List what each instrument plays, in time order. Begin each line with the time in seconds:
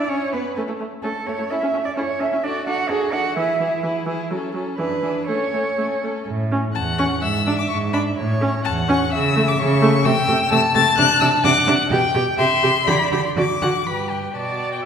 Already playing: cello D5, violin D5
0.08 violin C#4 C#5, viola C#4, cello C#5
0.33 violin B3 B4, viola B3, cello B4
0.56 viola A3, violin C#4 A4
0.68 viola A3, violin A3 E4
0.79 viola A3, violin A3 C#4
1.02 viola A3, violin C#4 A4, cello A4
1.26 violin A3 C#4, viola A3, cello C#5
1.38 violin A3 E4, viola A3
1.50 viola C#4, violin E4 A4, cello E5
1.61 viola C#4, violin C#4 E4
1.74 violin A3 C#4, viola C#4
1.85 cello D5
1.96 viola C#4, violin E4 A4, cello C#5
2.20 violin A3 C#4, viola C#4, cello E5
2.32 violin C#4 E4, viola C#4
2.44 viola D4, violin F#4 A4, cello D5
2.67 viola D4, violin F#4 A4, cello F#5
2.89 viola D4, violin F#4 A4, cello G#4
3.12 viola D4, violin F#4 A4, cello F#5
3.36 viola E3, violin E4 G#4, cello E5
3.60 viola E3, violin E4 G#4
3.83 viola E3, violin E4 G#4
4.06 viola E3, violin E4 G#4
4.30 viola F#3, violin C#4 A4
4.54 viola F#3, violin C#4 A4
4.78 viola E3, violin D4 G#4, cello B4
5.03 viola E3, violin D4 G#4
5.27 viola A3, violin C#4 A4, cello C#5
5.52 viola A3, violin C#4 A4
5.77 viola A3, violin C#4 A4
6.02 viola A3, violin C#4 A4
6.27 cello A2
6.52 viola C#4
6.74 cello E2, violin F#5 A5
6.98 viola C#4, violin C#6
7.22 cello G#2, violin E5 E6
7.47 viola D4
7.59 violin D6
7.70 cello G#2, violin C#6
7.93 viola D4, violin B5
8.17 cello A2, violin C#5
8.41 viola C#4
8.64 cello E2, violin F#5 A5
8.89 viola C#4, violin C#6
9.11 cello C#3, violin E5 E6
9.36 viola A3
9.48 violin D6
9.58 cello C#3, violin C#6
9.82 viola A3
10.05 cello C3, viola A3, violin G5 E6
10.28 cello C3, viola A3
10.51 cello C3, viola A3, violin A5 E6
10.75 cello C3, viola A3, violin A6
10.98 cello C3, viola D4, violin F#6
11.21 cello C3, viola D4, violin E6
11.44 cello C3, viola D4, violin F#5 D6
11.67 cello C3, viola D4
11.91 cello B2, viola G4, violin G5
12.14 cello B2, viola G4
12.38 cello C3, viola G4, violin E5 C6
12.63 cello C3, viola G4
12.86 cello D3, viola G4, violin D5 B5
13.12 cello D3, viola G4, violin B5
13.25 violin C6
13.36 cello D3, viola F#4, violin D5 D6
13.62 cello D3, viola F#4, violin F#5
13.86 cello G2, violin G4 B5, viola B4
14.10 violin G5
14.35 cello B2, violin F#4 A5, viola D5
14.72 violin G5